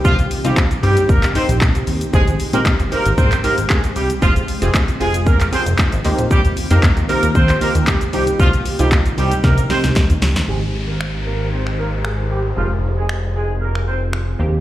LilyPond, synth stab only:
\new Staff \with { instrumentName = "Synth stab" } { \time 4/4 \key f \minor \tempo 4 = 115 <c' ees' g'>8 r16 <c' ees' f'>8 r16 <c' ees' g'>8 r8 <c' ees' g'>8. r8. | <aes c' ees' g' c''>8 r16 <aes c' ees' g' c''>8 r16 <aes c' ees' g' c''>8 r8 <aes c' ees' g' c''>8. r8. | <c' f' aes'>8 r16 <c' f' g'>8 r16 <c' f' aes'>8 r8 <c' f' aes'>8. r16 <bes c' ees' g' c''>8~ | <bes c' ees' g' c''>8 r16 <bes c' ees' g' c''>8 r16 <bes c' ees' g' c''>8 r8 <bes c' ees' g' c''>8. r16 <c' ees' g'>8~ |
<c' ees' g'>8 r16 <c' ees' f'>8 r16 <c' ees' g'>8 r8 <c' ees' g'>8. r8. | <ees aes c' g'>1 | <f aes c' aes'>2.~ <f aes c' aes'>8 <ees bes c' g'>8 | }